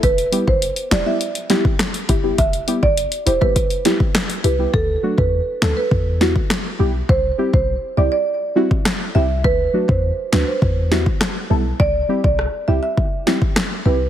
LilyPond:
<<
  \new Staff \with { instrumentName = "Marimba" } { \time 4/4 \key e \minor \tempo 4 = 102 b'16 r8 c''16 r8 d''16 e''16 r2 | e''16 r8 d''16 r8 c''16 b'16 r4. b'16 r16 | a'16 r8 b'16 r8 a'16 b'16 r2 | c''16 r8 c''16 r8 d''16 d''16 r4. e''16 r16 |
b'16 r8 c''16 r8 b'16 c''16 r2 | d''16 r8 d''16 r8 e''16 e''16 r4. b'16 r16 | }
  \new Staff \with { instrumentName = "Synth stab" } { \time 4/4 \key e \minor r8 <g b e' g'>16 r8. <e' g'>16 <g b e' g'>16 r8 <g b e' g'>16 r8. <e' g'>16 <g b e' g'>16 | r8 <g b e' g'>16 r8. <e' g'>16 <g b e' g'>16 r8 <g b e' g'>16 r8. <e' g'>16 <g b e' g'>16 | r8 <fis a d' fis'>16 r8. <fis a d' a'>16 r8. <g b e' fis'>16 r8. <g b e' g'>16 r16 | r8 <g c' e' g'>16 r8. <g c' e' g'>16 r8. <g c' e' fis'>16 r8. <g c' e' g'>16 r16 |
r8 <fis a d' fis'>16 r8. <fis a d' fis'>16 r8. <g b e' fis'>16 r8. <g b e' a'>16 r16 | r8 <g c' e' g'>16 r8. <g c' e' g'>16 r8. <g c' e' g'>16 r8. <g c' e' g'>16 r16 | }
  \new Staff \with { instrumentName = "808-style bass" } { \clef bass \time 4/4 \key e \minor e,,8 r16 fis,,8 r16 e,,16 r4. r16 fis,,8 | e,,8 r16 fis,,8 r16 e,,16 r4. r16 c,8 | d,8 r16 e,8 r16 d,16 r16 e,4 r8 b,,8 | c,8 r16 b,,8 r16 c,16 r4. r16 c,8 |
d,8 r16 e,8 r16 d,16 r16 e,4 r8 b,,8 | c,8 r16 b,,8 r16 c,16 r4. r16 c,8 | }
  \new DrumStaff \with { instrumentName = "Drums" } \drummode { \time 4/4 <hh bd>16 hh16 hh16 bd16 hh16 hh16 <hc hh sn>8 hh16 hh16 <hh sn>16 bd16 <hc hh ss sn>16 hh16 <hh bd>8 | <hh bd>16 hh16 hh16 bd16 hh16 hh16 hh16 bd16 <hh bd>16 hh16 <hh sn>16 bd16 <hc hh ss sn>16 hh16 hh8 | bd8. bd16 r8 <hc sn>8 bd8 sn16 bd16 <hc ss sn>4 | bd8. bd16 r4 r8. bd16 <hc ss sn>4 |
bd8. bd16 r8 <hc sn>8 bd8 sn16 bd16 <hc ss sn>4 | bd8. bd16 ss4 bd8 sn16 bd16 <hc ss sn>4 | }
>>